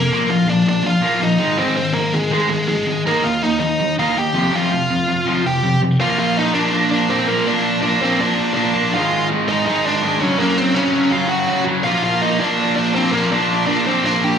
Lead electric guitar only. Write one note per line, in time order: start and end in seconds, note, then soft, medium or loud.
0.00 0.26 A#3 medium
0.00 0.29 A#4 medium
0.30 0.47 F4 medium
0.30 0.49 F5 medium
0.49 0.66 D4 medium
0.49 0.66 D5 loud
0.69 0.85 D4 medium
0.69 0.85 D5 medium
0.86 1.20 F4 medium
0.86 1.23 F5 medium
1.23 1.57 D#4 medium
1.23 1.57 D#5 medium
1.59 1.76 C4 medium
1.59 1.75 C5 medium
1.76 1.94 C4 medium
1.76 1.93 C5 medium
1.94 2.12 A#3 medium
1.94 2.13 A#4 medium
2.13 2.30 G#3 medium
2.13 2.32 G#4 medium
2.34 2.50 G#3 medium
2.34 2.49 G#4 medium
2.50 2.68 G#3 medium
2.50 2.67 G#4 medium
2.68 3.03 G#3 medium
2.68 3.03 G#4 medium
3.07 3.24 A#3 medium
3.07 3.25 A#4 medium
3.24 3.42 F4 medium
3.24 3.43 F5 medium
3.43 3.59 D#4 medium
3.43 3.59 D#5 medium
3.60 3.95 D#4 medium
3.60 3.95 D#5 medium
3.99 4.16 F4 medium
3.99 4.18 F5 medium
4.18 4.52 G4 medium
4.18 4.55 G5 loud
4.55 5.61 F4 medium
4.55 5.60 F5 medium
5.47 5.80 G4 medium
5.47 5.80 G5 loud
6.01 6.18 F4 medium
6.01 6.18 F5 loud
6.19 6.36 F4 medium
6.19 6.37 F5 loud
6.37 6.54 D#4 medium
6.37 6.53 D#5 medium
6.53 6.89 D4 medium
6.53 6.90 D5 loud
6.91 7.10 D4 medium
6.91 7.10 D5 loud
7.10 7.28 C4 medium
7.10 7.28 C5 loud
7.28 7.46 A#3 medium
7.28 7.47 A#4 medium
7.48 7.82 D4 medium
7.48 7.81 D5 loud
7.82 8.00 D4 medium
7.82 8.02 D5 loud
8.02 8.19 C4 medium
8.02 8.20 C5 loud
8.21 8.55 D4 medium
8.21 8.53 D5 loud
8.54 8.90 D4 medium
8.54 8.93 D5 loud
8.94 9.28 F4 medium
8.94 9.27 F5 loud
9.49 9.66 D#4 medium
9.49 9.65 D#5 medium
9.66 9.85 D#4 medium
9.66 9.85 D#5 loud
9.85 10.20 D4 medium
9.85 10.21 D5 loud
10.21 10.39 C#4 medium
10.21 10.38 C#5 medium
10.38 10.57 A#3 medium
10.38 10.57 A#4 medium
10.57 10.76 C4 medium
10.57 10.75 C5 medium
10.75 11.10 C#4 medium
10.75 11.12 C#5 medium
11.12 11.31 F4 medium
11.12 11.28 F5 loud
11.29 11.65 F#4 medium
11.29 11.63 F#5 loud
11.84 12.03 F4 medium
11.84 12.02 F5 loud
12.04 12.22 F4 medium
12.04 12.21 F5 loud
12.22 12.40 D#4 medium
12.22 12.40 D#5 loud
12.40 12.75 D4 medium
12.40 12.75 D5 medium
12.76 12.94 D4 medium
12.76 12.94 D5 medium
12.94 13.13 C4 medium
12.94 13.11 C5 medium
13.11 13.30 A#3 medium
13.11 13.31 A#4 medium
13.32 13.67 D4 medium
13.32 13.66 D5 medium
13.67 13.85 D4 medium
13.67 13.84 D5 medium
13.87 14.04 C4 medium
13.87 14.06 C5 medium
14.06 14.22 D4 medium
14.06 14.23 D5 loud
14.24 14.38 G4 medium
14.24 14.38 G5 loud